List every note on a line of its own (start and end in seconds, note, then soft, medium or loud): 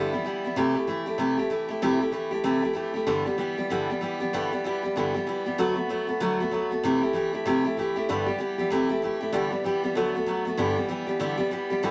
0.00 0.12 G2 medium
0.00 0.12 D3 medium
0.00 0.13 E3 medium
0.00 0.13 G3 loud
0.00 0.12 B3 medium
0.00 0.11 E4 medium
0.12 0.23 E3 medium
0.12 0.24 G3 medium
0.12 0.26 B3 soft
0.12 0.25 E4 medium
0.24 0.44 E3 medium
0.24 0.44 G3 medium
0.24 0.44 B3 medium
0.24 0.43 E4 medium
0.44 0.56 E3 medium
0.44 0.57 G3 soft
0.44 0.57 B3 soft
0.44 0.56 E4 medium
0.56 0.75 C3 medium
0.56 0.75 E3 loud
0.56 0.76 A3 medium
0.56 0.74 E4 loud
0.56 0.73 G4 loud
0.75 0.87 A3 soft
0.75 0.88 E4 medium
0.75 0.87 G4 medium
0.87 1.06 E3 medium
0.87 1.07 A3 medium
0.87 1.06 E4 medium
0.87 1.05 G4 medium
1.06 1.18 A3 soft
1.06 1.18 E4 medium
1.06 1.19 G4 medium
1.18 1.37 C3 medium
1.18 1.37 E3 medium
1.18 1.38 A3 medium
1.18 1.38 E4 medium
1.18 1.36 G4 medium
1.38 1.50 A3 soft
1.38 1.50 E4 medium
1.38 1.50 G4 medium
1.50 1.69 E3 medium
1.50 1.69 A3 medium
1.50 1.69 E4 medium
1.50 1.67 G4 medium
1.69 1.81 A3 soft
1.69 1.82 E4 medium
1.69 1.81 G4 medium
1.82 2.01 C3 loud
1.82 2.01 E3 medium
1.82 2.01 A3 loud
1.82 2.00 E4 loud
1.82 1.99 G4 loud
2.00 2.11 A3 medium
2.00 2.12 E4 soft
2.00 2.13 G4 medium
2.12 2.31 E3 medium
2.12 2.31 A3 medium
2.12 2.31 E4 medium
2.12 2.30 G4 medium
2.31 2.43 A3 soft
2.31 2.44 E4 medium
2.31 2.44 G4 medium
2.44 2.63 C3 medium
2.44 2.63 E3 medium
2.44 2.63 A3 medium
2.44 2.62 E4 medium
2.44 2.61 G4 medium
2.62 2.73 A3 soft
2.62 2.75 E4 medium
2.62 2.75 G4 medium
2.73 2.93 E3 medium
2.73 2.94 A3 medium
2.73 2.94 E4 medium
2.73 2.92 G4 medium
2.94 3.07 A3 medium
2.94 3.07 E4 soft
2.94 3.06 G4 medium
3.07 3.26 G2 medium
3.07 3.26 D3 loud
3.07 3.26 E3 medium
3.07 3.26 G3 loud
3.07 3.25 B3 loud
3.07 3.24 G4 loud
3.25 3.37 E3 soft
3.25 3.37 G3 medium
3.25 3.38 B3 medium
3.25 3.38 G4 medium
3.38 3.57 E3 medium
3.38 3.57 G3 medium
3.38 3.57 B3 medium
3.38 3.56 G4 medium
3.58 3.70 E3 soft
3.58 3.70 G3 medium
3.58 3.70 B3 medium
3.58 3.70 G4 medium
3.70 3.88 G2 medium
3.70 3.89 D3 medium
3.70 3.89 E3 medium
3.70 3.89 G3 loud
3.70 3.89 B3 loud
3.70 3.88 G4 medium
3.89 4.00 E3 soft
3.89 4.01 G3 medium
3.89 4.02 B3 medium
3.89 4.01 G4 medium
4.01 4.20 E3 medium
4.01 4.20 G3 medium
4.01 4.20 B3 medium
4.01 4.19 G4 medium
4.20 4.33 E3 medium
4.20 4.33 G3 medium
4.20 4.33 B3 medium
4.20 4.32 G4 medium
4.33 4.51 G2 medium
4.33 4.52 D3 medium
4.33 4.52 E3 medium
4.33 4.52 G3 medium
4.33 4.52 B3 loud
4.33 4.50 G4 loud
4.52 4.63 E3 soft
4.52 4.64 G3 soft
4.52 4.64 B3 medium
4.52 4.64 G4 medium
4.64 4.83 E3 medium
4.64 4.83 G3 medium
4.64 4.83 B3 medium
4.64 4.82 G4 medium
4.83 4.96 E3 soft
4.83 4.96 G3 soft
4.83 4.96 B3 medium
4.83 4.95 G4 medium
4.96 5.14 G2 medium
4.96 5.15 D3 medium
4.96 5.15 E3 medium
4.96 5.15 G3 medium
4.96 5.14 B3 medium
4.96 5.13 G4 medium
5.14 5.25 E3 medium
5.14 5.26 G3 medium
5.14 5.27 B3 medium
5.14 5.26 G4 medium
5.27 5.45 E3 medium
5.27 5.45 G3 medium
5.27 5.45 B3 medium
5.27 5.45 G4 medium
5.46 5.58 E3 soft
5.46 5.58 G3 medium
5.46 5.58 B3 medium
5.46 5.58 G4 medium
5.58 5.77 D3 medium
5.58 5.77 F#3 medium
5.58 5.77 A3 loud
5.58 5.76 B3 loud
5.58 5.74 F#4 loud
5.75 5.89 A3 soft
5.75 5.89 B3 medium
5.75 5.88 F#4 medium
5.89 6.08 F#3 medium
5.89 6.08 A3 medium
5.89 6.07 B3 medium
5.89 6.06 F#4 medium
6.07 6.20 A3 soft
6.07 6.21 B3 medium
6.07 6.20 F#4 medium
6.20 6.39 D3 medium
6.20 6.39 F#3 loud
6.20 6.39 A3 loud
6.20 6.40 B3 medium
6.20 6.39 F#4 medium
6.40 6.52 A3 soft
6.40 6.52 B3 medium
6.40 6.52 F#4 medium
6.51 6.70 F#3 medium
6.51 6.71 A3 medium
6.51 6.71 B3 medium
6.51 6.70 F#4 medium
6.71 6.84 A3 soft
6.71 6.84 B3 soft
6.71 6.83 F#4 medium
6.84 7.02 C3 loud
6.84 7.02 E3 medium
6.84 7.03 A3 medium
6.84 7.02 E4 loud
6.84 7.00 G4 loud
7.02 7.13 A3 soft
7.02 7.14 E4 medium
7.02 7.14 G4 medium
7.13 7.32 E3 medium
7.13 7.33 A3 medium
7.13 7.33 E4 medium
7.13 7.32 G4 medium
7.33 7.46 A3 medium
7.33 7.46 E4 medium
7.33 7.45 G4 medium
7.45 7.64 C3 loud
7.45 7.65 E3 medium
7.45 7.65 A3 medium
7.45 7.65 E4 medium
7.45 7.63 G4 loud
7.64 7.77 A3 soft
7.64 7.78 E4 medium
7.64 7.77 G4 medium
7.77 7.96 E3 medium
7.77 7.96 A3 medium
7.77 7.96 E4 medium
7.77 7.95 G4 medium
7.96 8.09 A3 soft
7.96 8.09 E4 medium
7.96 8.08 G4 medium
8.09 8.27 G2 loud
8.09 8.27 D3 medium
8.09 8.28 E3 loud
8.09 8.27 G3 loud
8.09 8.27 B3 medium
8.09 8.25 G4 loud
8.26 8.37 E3 soft
8.26 8.38 G3 medium
8.26 8.39 B3 medium
8.26 8.39 G4 medium
8.38 8.58 E3 medium
8.38 8.58 G3 medium
8.38 8.58 B3 medium
8.38 8.57 G4 medium
8.58 8.70 E3 medium
8.58 8.71 G3 medium
8.58 8.71 B3 medium
8.58 8.71 G4 medium
8.70 8.89 C3 medium
8.70 8.90 E3 medium
8.70 8.90 A3 medium
8.70 8.89 E4 loud
8.70 8.88 G4 loud
8.89 9.02 A3 medium
8.89 9.02 E4 medium
8.89 9.02 G4 medium
9.02 9.21 E3 medium
9.02 9.21 A3 medium
9.02 9.21 E4 medium
9.02 9.19 G4 medium
9.21 9.34 A3 medium
9.21 9.33 E4 medium
9.21 9.33 G4 medium
9.32 9.52 G2 loud
9.32 9.52 D3 loud
9.32 9.52 E3 loud
9.32 9.51 G3 loud
9.32 9.51 B3 loud
9.32 9.49 G4 loud
9.50 9.63 E3 medium
9.50 9.64 G3 medium
9.50 9.64 B3 medium
9.50 9.64 G4 medium
9.64 9.83 E3 medium
9.64 9.84 G3 medium
9.64 9.83 B3 medium
9.64 9.82 G4 medium
9.83 9.96 E3 soft
9.83 9.96 G3 medium
9.83 9.96 B3 medium
9.83 9.96 G4 medium
9.95 10.14 D3 medium
9.95 10.15 F#3 medium
9.95 10.15 A3 loud
9.95 10.15 B3 medium
9.95 10.14 F#4 medium
10.15 10.27 A3 medium
10.15 10.27 B3 medium
10.15 10.27 F#4 medium
10.26 10.45 F#3 medium
10.26 10.46 A3 medium
10.26 10.46 B3 medium
10.26 10.44 F#4 medium
10.45 10.58 A3 medium
10.45 10.58 B3 medium
10.45 10.58 F#4 medium
10.58 10.77 G2 loud
10.58 10.77 D3 loud
10.58 10.77 E3 loud
10.58 10.77 G3 loud
10.58 10.76 B3 loud
10.58 10.75 G4 loud
10.76 10.87 E3 soft
10.76 10.88 G3 medium
10.76 10.89 B3 medium
10.76 10.89 G4 medium
10.88 11.08 E3 medium
10.88 11.07 G3 medium
10.88 11.07 B3 medium
10.88 11.05 G4 medium
11.06 11.19 E3 soft
11.06 11.19 G3 medium
11.06 11.19 B3 medium
11.06 11.20 G4 medium
11.19 11.39 G2 medium
11.19 11.39 D3 medium
11.19 11.38 E3 loud
11.19 11.38 G3 medium
11.19 11.37 B3 loud
11.19 11.36 G4 loud
11.37 11.50 E3 medium
11.37 11.51 G3 medium
11.37 11.51 B3 medium
11.37 11.51 G4 medium
11.51 11.70 E3 medium
11.51 11.70 G3 medium
11.51 11.70 B3 medium
11.51 11.69 G4 medium
11.70 11.82 E3 soft
11.70 11.82 G3 medium
11.70 11.83 B3 medium
11.70 11.83 G4 medium
11.83 11.91 G2 loud
11.83 11.91 D3 medium
11.83 11.91 E3 loud
11.83 11.91 G3 loud
11.83 11.91 B3 loud
11.83 11.91 G4 loud